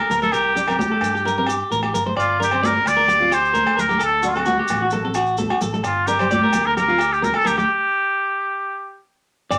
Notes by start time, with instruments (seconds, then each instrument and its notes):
Already playing: muted trumpet A#4
0.10 fingered electric bass D2, nylon-string guitar A#3, clean electric guitar A#4, muted conga, maracas
0.22 nylon-string guitar A3, muted trumpet A4, clean electric guitar A#4, maracas
0.32 fingered electric bass C2, muted trumpet G4, clean electric guitar A#4, muted conga, low agogo, maracas
0.55 nylon-string guitar D4, clean electric guitar G4, muted conga, maracas
0.67 nylon-string guitar C4, muted trumpet G4, clean electric guitar A#4, low agogo, maracas
0.79 clean electric guitar G4, high conga, maracas
0.92 clean electric guitar A4
1.01 fingered electric bass G2, nylon-string guitar A#3, low agogo, maracas
1.15 clean electric guitar G4, maracas
1.25 clean electric guitar A#4, muted nylon-string guitar stroke, muted conga, maracas
1.38 nylon-string guitar C4, clean electric guitar A#4
1.46 clean electric guitar G4, low agogo, maracas
1.71 fingered electric bass A1, clean electric guitar A#4, high conga, maracas
1.83 clean electric guitar G4, low agogo
1.94 fingered electric bass G1, nylon-string guitar A#3, clean electric guitar A#4, muted conga, maracas
2.06 nylon-string guitar A3, clean electric guitar C5
2.16 fingered electric bass G1, muted trumpet F4, clean electric guitar D5, muted conga, low agogo, maracas
2.40 nylon-string guitar D4, muted trumpet G4, clean electric guitar A#4, muted conga, maracas
2.51 nylon-string guitar C4, clean electric guitar C5, low agogo
2.63 muted trumpet A#4, clean electric guitar D5, high conga, maracas
2.75 muted clean electric guitar stroke
2.85 fingered electric bass D2, muted trumpet D5, high conga, low agogo, maracas
2.97 clean electric guitar A#4
3.08 nylon-string guitar A#3, clean electric guitar G4, muted conga, maracas
3.20 nylon-string guitar C4, clean electric guitar F4
3.31 clean electric guitar G4, muted trumpet C5, low agogo, maracas
3.45 maracas
3.54 clean electric guitar A#4, high conga, maracas
3.66 clean electric guitar A4, low agogo
3.77 fingered electric bass D2, nylon-string guitar A#3, clean electric guitar A#4, muted trumpet A#4, muted conga, maracas
3.89 nylon-string guitar A3, clean electric guitar G4, maracas
3.99 fingered electric bass D2, clean electric guitar A4, muted conga, low agogo, maracas
4.05 muted trumpet A4
4.23 nylon-string guitar D4, clean electric guitar F#4, muted conga, maracas
4.27 muted trumpet F#4
4.35 nylon-string guitar C4, clean electric guitar A4, low agogo, maracas
4.45 clean electric guitar F#4, high conga, maracas
4.59 clean electric guitar G4
4.68 fingered electric bass A1, nylon-string guitar A#3, high conga, low agogo, maracas
4.82 clean electric guitar F#4
4.90 nylon-string guitar A#3, clean electric guitar A4, muted conga, maracas
5.05 nylon-string guitar C4, clean electric guitar A4
5.14 clean electric guitar F#4, low agogo, maracas
5.26 maracas
5.37 clean electric guitar A4, high conga, maracas
5.50 clean electric guitar F#4, low agogo
5.61 fingered electric bass A1, nylon-string guitar A#3, clean electric guitar A4, maracas
5.74 nylon-string guitar A3, clean electric guitar A4, maracas
5.84 fingered electric bass G1, muted trumpet F4, muted clean electric guitar stroke, muted conga, low agogo, maracas
6.07 nylon-string guitar D4, muted trumpet G4, clean electric guitar A#4, muted conga, maracas
6.19 nylon-string guitar G3, clean electric guitar C5, low agogo, maracas
6.31 clean electric guitar D5, high conga, maracas
6.44 clean electric guitar A#4
6.53 fingered electric bass D2, nylon-string guitar A#3, high conga, low agogo, maracas
6.66 muted trumpet A#4, clean electric guitar A#4
6.77 nylon-string guitar A#3, clean electric guitar G4, muted trumpet A#4, muted conga, maracas
6.88 nylon-string guitar C4, clean electric guitar F4
6.99 clean electric guitar G4, low agogo, maracas
7.13 muted trumpet G4, maracas
7.22 clean electric guitar A#4, muted trumpet A#4, high conga, maracas
7.34 clean electric guitar A4, muted trumpet A4, low agogo
7.45 fingered electric bass D2, nylon-string guitar A#3, muted trumpet G4, clean electric guitar A#4, muted conga, maracas
7.57 nylon-string guitar A3, clean electric guitar G4, muted trumpet G4, maracas
9.51 fingered electric bass G1, clean electric guitar D5, muted conga, low agogo, maracas